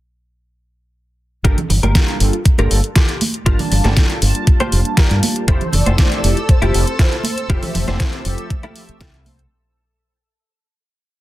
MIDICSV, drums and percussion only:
0, 0, Header, 1, 2, 480
1, 0, Start_track
1, 0, Tempo, 504202
1, 1379, Time_signature, 4, 2, 24, 8
1, 10667, End_track
2, 0, Start_track
2, 0, Title_t, "Drums"
2, 1377, Note_on_c, 9, 36, 108
2, 1380, Note_on_c, 9, 42, 88
2, 1472, Note_off_c, 9, 36, 0
2, 1475, Note_off_c, 9, 42, 0
2, 1502, Note_on_c, 9, 64, 72
2, 1503, Note_on_c, 9, 42, 37
2, 1597, Note_off_c, 9, 64, 0
2, 1598, Note_off_c, 9, 42, 0
2, 1617, Note_on_c, 9, 64, 82
2, 1620, Note_on_c, 9, 46, 93
2, 1713, Note_off_c, 9, 64, 0
2, 1716, Note_off_c, 9, 46, 0
2, 1745, Note_on_c, 9, 42, 36
2, 1747, Note_on_c, 9, 63, 83
2, 1840, Note_off_c, 9, 42, 0
2, 1842, Note_off_c, 9, 63, 0
2, 1857, Note_on_c, 9, 36, 104
2, 1858, Note_on_c, 9, 38, 117
2, 1861, Note_on_c, 9, 42, 93
2, 1952, Note_off_c, 9, 36, 0
2, 1953, Note_off_c, 9, 38, 0
2, 1957, Note_off_c, 9, 42, 0
2, 1982, Note_on_c, 9, 42, 36
2, 2077, Note_off_c, 9, 42, 0
2, 2098, Note_on_c, 9, 46, 93
2, 2194, Note_off_c, 9, 46, 0
2, 2221, Note_on_c, 9, 42, 37
2, 2316, Note_off_c, 9, 42, 0
2, 2337, Note_on_c, 9, 36, 104
2, 2338, Note_on_c, 9, 42, 88
2, 2432, Note_off_c, 9, 36, 0
2, 2433, Note_off_c, 9, 42, 0
2, 2456, Note_on_c, 9, 63, 58
2, 2462, Note_on_c, 9, 42, 37
2, 2552, Note_off_c, 9, 63, 0
2, 2557, Note_off_c, 9, 42, 0
2, 2579, Note_on_c, 9, 46, 94
2, 2674, Note_off_c, 9, 46, 0
2, 2702, Note_on_c, 9, 42, 36
2, 2798, Note_off_c, 9, 42, 0
2, 2813, Note_on_c, 9, 38, 112
2, 2816, Note_on_c, 9, 36, 109
2, 2817, Note_on_c, 9, 42, 88
2, 2909, Note_off_c, 9, 38, 0
2, 2911, Note_off_c, 9, 36, 0
2, 2912, Note_off_c, 9, 42, 0
2, 2939, Note_on_c, 9, 42, 37
2, 3034, Note_off_c, 9, 42, 0
2, 3056, Note_on_c, 9, 46, 95
2, 3059, Note_on_c, 9, 63, 76
2, 3151, Note_off_c, 9, 46, 0
2, 3155, Note_off_c, 9, 63, 0
2, 3180, Note_on_c, 9, 42, 36
2, 3275, Note_off_c, 9, 42, 0
2, 3296, Note_on_c, 9, 36, 110
2, 3297, Note_on_c, 9, 42, 83
2, 3392, Note_off_c, 9, 36, 0
2, 3392, Note_off_c, 9, 42, 0
2, 3420, Note_on_c, 9, 46, 59
2, 3422, Note_on_c, 9, 64, 74
2, 3515, Note_off_c, 9, 46, 0
2, 3517, Note_off_c, 9, 64, 0
2, 3538, Note_on_c, 9, 46, 99
2, 3543, Note_on_c, 9, 64, 79
2, 3633, Note_off_c, 9, 46, 0
2, 3638, Note_off_c, 9, 64, 0
2, 3657, Note_on_c, 9, 38, 35
2, 3661, Note_on_c, 9, 42, 36
2, 3670, Note_on_c, 9, 63, 82
2, 3753, Note_off_c, 9, 38, 0
2, 3756, Note_off_c, 9, 42, 0
2, 3765, Note_off_c, 9, 63, 0
2, 3775, Note_on_c, 9, 38, 121
2, 3777, Note_on_c, 9, 36, 110
2, 3779, Note_on_c, 9, 42, 90
2, 3871, Note_off_c, 9, 38, 0
2, 3872, Note_off_c, 9, 36, 0
2, 3874, Note_off_c, 9, 42, 0
2, 3899, Note_on_c, 9, 42, 36
2, 3995, Note_off_c, 9, 42, 0
2, 4017, Note_on_c, 9, 46, 101
2, 4112, Note_off_c, 9, 46, 0
2, 4141, Note_on_c, 9, 42, 37
2, 4236, Note_off_c, 9, 42, 0
2, 4257, Note_on_c, 9, 36, 110
2, 4257, Note_on_c, 9, 42, 86
2, 4352, Note_off_c, 9, 36, 0
2, 4352, Note_off_c, 9, 42, 0
2, 4380, Note_on_c, 9, 42, 36
2, 4390, Note_on_c, 9, 63, 60
2, 4475, Note_off_c, 9, 42, 0
2, 4485, Note_off_c, 9, 63, 0
2, 4496, Note_on_c, 9, 46, 99
2, 4591, Note_off_c, 9, 46, 0
2, 4619, Note_on_c, 9, 42, 36
2, 4715, Note_off_c, 9, 42, 0
2, 4732, Note_on_c, 9, 38, 115
2, 4736, Note_on_c, 9, 42, 88
2, 4737, Note_on_c, 9, 36, 110
2, 4828, Note_off_c, 9, 38, 0
2, 4831, Note_off_c, 9, 42, 0
2, 4832, Note_off_c, 9, 36, 0
2, 4863, Note_on_c, 9, 42, 36
2, 4958, Note_off_c, 9, 42, 0
2, 4978, Note_on_c, 9, 46, 101
2, 4980, Note_on_c, 9, 63, 82
2, 5073, Note_off_c, 9, 46, 0
2, 5075, Note_off_c, 9, 63, 0
2, 5102, Note_on_c, 9, 42, 37
2, 5197, Note_off_c, 9, 42, 0
2, 5217, Note_on_c, 9, 42, 86
2, 5218, Note_on_c, 9, 36, 116
2, 5312, Note_off_c, 9, 42, 0
2, 5313, Note_off_c, 9, 36, 0
2, 5341, Note_on_c, 9, 42, 35
2, 5346, Note_on_c, 9, 64, 69
2, 5436, Note_off_c, 9, 42, 0
2, 5441, Note_off_c, 9, 64, 0
2, 5451, Note_on_c, 9, 64, 82
2, 5457, Note_on_c, 9, 46, 103
2, 5547, Note_off_c, 9, 64, 0
2, 5552, Note_off_c, 9, 46, 0
2, 5583, Note_on_c, 9, 42, 35
2, 5583, Note_on_c, 9, 63, 90
2, 5678, Note_off_c, 9, 42, 0
2, 5678, Note_off_c, 9, 63, 0
2, 5696, Note_on_c, 9, 38, 123
2, 5698, Note_on_c, 9, 36, 115
2, 5699, Note_on_c, 9, 42, 84
2, 5791, Note_off_c, 9, 38, 0
2, 5793, Note_off_c, 9, 36, 0
2, 5794, Note_off_c, 9, 42, 0
2, 5824, Note_on_c, 9, 42, 35
2, 5919, Note_off_c, 9, 42, 0
2, 5940, Note_on_c, 9, 46, 103
2, 6035, Note_off_c, 9, 46, 0
2, 6065, Note_on_c, 9, 42, 35
2, 6160, Note_off_c, 9, 42, 0
2, 6178, Note_on_c, 9, 36, 120
2, 6178, Note_on_c, 9, 42, 84
2, 6273, Note_off_c, 9, 36, 0
2, 6274, Note_off_c, 9, 42, 0
2, 6303, Note_on_c, 9, 42, 35
2, 6304, Note_on_c, 9, 63, 60
2, 6399, Note_off_c, 9, 42, 0
2, 6399, Note_off_c, 9, 63, 0
2, 6420, Note_on_c, 9, 46, 100
2, 6516, Note_off_c, 9, 46, 0
2, 6544, Note_on_c, 9, 42, 38
2, 6639, Note_off_c, 9, 42, 0
2, 6657, Note_on_c, 9, 36, 115
2, 6657, Note_on_c, 9, 38, 114
2, 6660, Note_on_c, 9, 42, 83
2, 6752, Note_off_c, 9, 36, 0
2, 6752, Note_off_c, 9, 38, 0
2, 6755, Note_off_c, 9, 42, 0
2, 6784, Note_on_c, 9, 42, 35
2, 6879, Note_off_c, 9, 42, 0
2, 6887, Note_on_c, 9, 63, 86
2, 6898, Note_on_c, 9, 46, 109
2, 6982, Note_off_c, 9, 63, 0
2, 6994, Note_off_c, 9, 46, 0
2, 7022, Note_on_c, 9, 42, 35
2, 7117, Note_off_c, 9, 42, 0
2, 7137, Note_on_c, 9, 36, 120
2, 7138, Note_on_c, 9, 42, 84
2, 7232, Note_off_c, 9, 36, 0
2, 7233, Note_off_c, 9, 42, 0
2, 7260, Note_on_c, 9, 46, 60
2, 7260, Note_on_c, 9, 64, 73
2, 7355, Note_off_c, 9, 46, 0
2, 7356, Note_off_c, 9, 64, 0
2, 7376, Note_on_c, 9, 64, 79
2, 7378, Note_on_c, 9, 46, 101
2, 7472, Note_off_c, 9, 64, 0
2, 7473, Note_off_c, 9, 46, 0
2, 7497, Note_on_c, 9, 63, 88
2, 7499, Note_on_c, 9, 38, 34
2, 7502, Note_on_c, 9, 42, 34
2, 7593, Note_off_c, 9, 63, 0
2, 7594, Note_off_c, 9, 38, 0
2, 7598, Note_off_c, 9, 42, 0
2, 7615, Note_on_c, 9, 38, 112
2, 7617, Note_on_c, 9, 36, 111
2, 7618, Note_on_c, 9, 42, 88
2, 7710, Note_off_c, 9, 38, 0
2, 7712, Note_off_c, 9, 36, 0
2, 7713, Note_off_c, 9, 42, 0
2, 7740, Note_on_c, 9, 42, 36
2, 7836, Note_off_c, 9, 42, 0
2, 7855, Note_on_c, 9, 46, 105
2, 7950, Note_off_c, 9, 46, 0
2, 7978, Note_on_c, 9, 42, 37
2, 8073, Note_off_c, 9, 42, 0
2, 8096, Note_on_c, 9, 36, 121
2, 8096, Note_on_c, 9, 42, 83
2, 8191, Note_off_c, 9, 36, 0
2, 8191, Note_off_c, 9, 42, 0
2, 8218, Note_on_c, 9, 42, 36
2, 8221, Note_on_c, 9, 63, 63
2, 8313, Note_off_c, 9, 42, 0
2, 8316, Note_off_c, 9, 63, 0
2, 8335, Note_on_c, 9, 46, 104
2, 8431, Note_off_c, 9, 46, 0
2, 8460, Note_on_c, 9, 42, 35
2, 8555, Note_off_c, 9, 42, 0
2, 8574, Note_on_c, 9, 38, 116
2, 8576, Note_on_c, 9, 36, 118
2, 8577, Note_on_c, 9, 42, 84
2, 8669, Note_off_c, 9, 38, 0
2, 8671, Note_off_c, 9, 36, 0
2, 8672, Note_off_c, 9, 42, 0
2, 8701, Note_on_c, 9, 42, 35
2, 8796, Note_off_c, 9, 42, 0
2, 8816, Note_on_c, 9, 46, 106
2, 8818, Note_on_c, 9, 63, 97
2, 8911, Note_off_c, 9, 46, 0
2, 8913, Note_off_c, 9, 63, 0
2, 8940, Note_on_c, 9, 42, 37
2, 9035, Note_off_c, 9, 42, 0
2, 10667, End_track
0, 0, End_of_file